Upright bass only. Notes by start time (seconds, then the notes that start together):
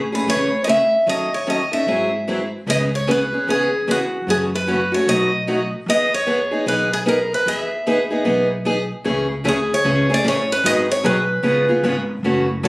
Already playing: A1
0.27 E2
1.07 D#2
1.87 G#1
2.66 C#2
3.47 D#2
3.87 E2
4.27 F#2
5.07 B1
5.86 E2
6.66 B1
7.46 E2
8.26 B1
9.06 C#2
9.45 D2
9.85 C#2
10.24 A1
10.64 G#1
11.04 B1
11.43 C#2
11.83 G#1
12.23 F#1
12.63 A1